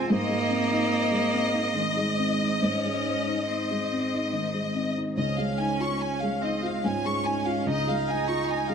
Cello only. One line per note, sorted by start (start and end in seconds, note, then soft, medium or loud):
0.00 0.11 C4 loud
0.10 1.77 A#3 loud
1.75 2.60 G#3 medium
2.61 3.48 C#4 medium
3.47 4.74 C4 medium
5.17 6.43 C#4 medium
6.41 6.82 C4 medium
6.83 7.68 C#4 medium
7.67 8.74 D#4 loud